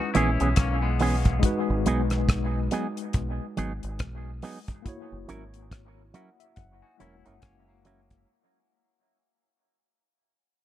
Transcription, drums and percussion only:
0.15 closed hi-hat
0.40 closed hi-hat
0.56 kick, cross-stick, closed hi-hat
0.99 open hi-hat
1.25 kick, closed hi-hat
1.43 kick, closed hi-hat
1.86 closed hi-hat
2.10 cross-stick, closed hi-hat
2.29 kick, cross-stick, closed hi-hat
2.71 closed hi-hat
2.97 closed hi-hat
3.13 kick, closed hi-hat
3.57 closed hi-hat
3.83 closed hi-hat
3.99 kick, cross-stick, closed hi-hat
4.42 open hi-hat
4.68 kick, closed hi-hat
4.86 kick, closed hi-hat
5.29 closed hi-hat
5.54 closed hi-hat
5.71 kick, cross-stick, closed hi-hat
6.14 closed hi-hat
6.40 closed hi-hat
6.56 kick, closed hi-hat
7.00 closed hi-hat
7.26 closed hi-hat
7.42 kick, cross-stick, closed hi-hat
7.85 closed hi-hat
8.10 kick, closed hi-hat

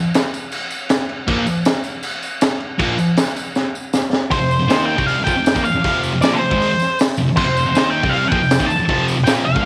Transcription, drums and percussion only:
0.14 snare, tambourine, crash
0.25 snare
0.34 tambourine, crash
0.52 tambourine, crash
0.70 tambourine, crash
0.89 snare, tambourine, crash
1.09 crash
1.28 kick, crash
1.46 tambourine, crash
1.65 snare, tambourine, crash
1.84 tambourine, crash
2.03 tambourine, crash
2.22 tambourine, crash
2.41 snare, tambourine, crash
2.60 crash
2.79 kick, tambourine, crash
2.98 tambourine, crash
3.17 snare, tambourine, crash
3.28 snare
3.36 tambourine, crash
3.55 snare, tambourine
3.75 tambourine
3.93 snare, tambourine
4.13 snare, tambourine
4.31 kick, open hi-hat, tambourine
4.51 tambourine
4.70 snare, open hi-hat, tambourine
4.98 kick, tambourine
5.08 open hi-hat
5.27 kick, tambourine
5.37 tambourine
5.46 snare, open hi-hat, tambourine
5.56 kick, tambourine
5.65 tambourine
5.74 tambourine
5.84 kick, open hi-hat, tambourine
6.03 tambourine
6.22 snare, open hi-hat, tambourine
6.51 kick, tambourine
6.62 open hi-hat
6.79 snare, tambourine
6.89 tambourine
6.99 snare, open hi-hat, tambourine
7.08 tambourine
7.17 tambourine
7.27 tambourine
7.37 kick, tambourine, crash
7.57 tambourine
7.75 snare, open hi-hat, tambourine
8.03 kick, tambourine
8.13 open hi-hat
8.32 kick
8.43 tambourine
8.50 snare, open hi-hat, tambourine
8.60 kick, tambourine
8.70 tambourine
8.80 tambourine
8.89 kick, open hi-hat
9.08 tambourine
9.27 snare, open hi-hat, tambourine
9.56 kick, tambourine

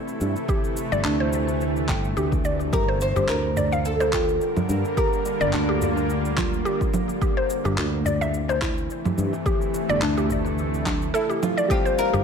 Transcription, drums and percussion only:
0.08 cabasa
0.21 cabasa
0.36 cabasa
0.49 kick, cabasa
0.64 cabasa
0.77 cabasa
0.92 cabasa
1.05 clap, cabasa
1.33 cabasa
1.48 cabasa
1.61 cabasa
1.76 cabasa
1.89 kick, clap, cabasa
2.04 cabasa
2.17 cabasa
2.32 kick, cabasa
2.45 cabasa
2.60 cabasa
2.73 kick, cabasa
3.01 darbuka ka, cabasa
3.16 darbuka tek, darbuka dum, cabasa
3.29 clap, cabasa
3.56 darbuka dum, cabasa
3.72 darbuka ka, cabasa
3.85 cabasa
4.00 darbuka tek, cabasa
4.13 kick, clap, darbuka tek, cabasa
4.29 cabasa
4.41 cabasa
4.56 low conga, darbuka dum, cabasa
4.69 cabasa
4.85 darbuka ka, cabasa
4.97 kick, cabasa
5.13 darbuka ka, cabasa
5.25 darbuka ka, cabasa
5.41 darbuka tek, darbuka dum, cabasa
5.53 clap, cabasa
5.82 darbuka dum, cabasa
5.97 darbuka ka, cabasa
6.10 cabasa
6.25 cabasa
6.37 kick, clap, low conga, cabasa
6.53 cabasa
6.66 cabasa
6.81 kick, cabasa
6.94 low conga, cabasa
7.09 cabasa
7.21 kick, cabasa
7.50 darbuka ka, cabasa
7.65 darbuka tek, darbuka dum, cabasa
7.78 clap, cabasa
8.05 darbuka dum, cabasa
8.22 darbuka ka, cabasa
8.34 cabasa
8.49 darbuka tek, cabasa
8.62 kick, clap, darbuka tek, cabasa
8.78 cabasa
8.90 cabasa
9.05 low conga, darbuka dum, cabasa
9.18 cabasa
9.33 darbuka ka, cabasa
9.46 kick, cabasa
9.61 darbuka ka, cabasa
9.74 darbuka ka, cabasa
9.89 darbuka tek, darbuka dum, cabasa
10.02 clap, cabasa
10.18 cabasa
10.30 kick, darbuka dum, cabasa
10.46 darbuka ka, cabasa
10.58 cabasa
10.74 cabasa
10.86 kick, clap, darbuka tek, low conga, cabasa
11.02 cabasa
11.15 cabasa
11.30 darbuka tek, cabasa
11.43 low conga, cabasa
11.58 cabasa
11.70 kick, cabasa
11.86 darbuka ka, cabasa
11.98 darbuka ka, cabasa
12.14 darbuka tek, darbuka dum, cabasa

